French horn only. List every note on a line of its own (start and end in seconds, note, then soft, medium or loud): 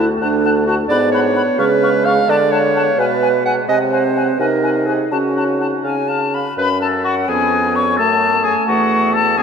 0.00 0.89 A3 medium
0.90 1.57 B3 medium
1.60 3.38 G#3 medium
3.69 4.36 C4 medium
4.40 5.14 D#4 medium
5.12 6.21 C#4 soft
6.58 7.31 C#4 soft
7.29 8.00 B3 medium
7.98 8.68 A3 soft
8.69 9.43 A3 medium